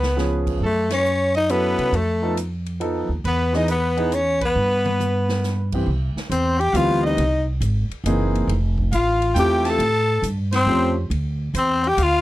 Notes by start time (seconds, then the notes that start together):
Already playing: C#2 B3 B4
0.03 snare
0.17 F3 B3 C#4 G#4, snare
0.47 kick, crash
0.60 F#2 A4
0.65 A3
0.90 C#4 C#5, snare, ride
1.05 hi-hat pedal
1.35 D#4 D#5, ride
1.49 F#3 B3 C#4 E4 A4 B4, hi-hat pedal, ride
1.78 C3, ride
1.92 F2 A4, ride
1.96 A3
2.22 F3 B3 D#4 A4
2.37 hi-hat pedal, ride
2.66 ride
2.80 F3 B3 D#4 A4, ride
3.09 D#2
3.24 E2 B3 B4, ride
3.53 E3 B3 D#4 G#4 D#5, snare
3.68 B3 B4, hi-hat pedal, ride
3.97 E3 B3 D#4 G#4, ride
4.12 C#4 C#5, hi-hat pedal, ride
4.41 B3 B4, kick, ride
4.55 G2
4.85 high tom
5.00 hi-hat pedal, high tom
5.29 snare
5.44 snare, hi-hat pedal
5.72 E3 B3 C4 G4, kick, crash
5.86 C2
6.15 muted upright bass stroke, snare
6.30 E2 C4 C5, hi-hat pedal, ride
6.58 G4 G5, ride
6.73 D2 E3 G3 B3 C4 F4 G4 F5, hi-hat pedal, ride
7.02 D#5
7.06 D#4
7.17 C2, ride
7.60 G#1, hi-hat pedal, ride
7.90 muted upright bass stroke, ride
8.04 F#1 E3 A#3 C4 D#4 G#4, hi-hat pedal, ride
8.35 ride
8.47 F1, ride
8.78 kick
8.92 A1 F4 F5, hi-hat pedal, ride
9.22 ride
9.34 E2 A3 C4 E4 F4 G4 G5, hi-hat pedal, ride
9.39 G4
9.65 A5, snare, ride
9.70 A4
9.78 A2, ride
10.22 G2, hi-hat pedal, ride
10.52 C4 C5, snare, ride
10.66 F2 F3 A3 C4 C#4 G4
11.10 D2, ride
11.54 E2 C5, hi-hat pedal, ride
11.58 C4
11.84 G5, ride
11.88 G4
11.97 D2 F5, hi-hat pedal, ride
12.03 F4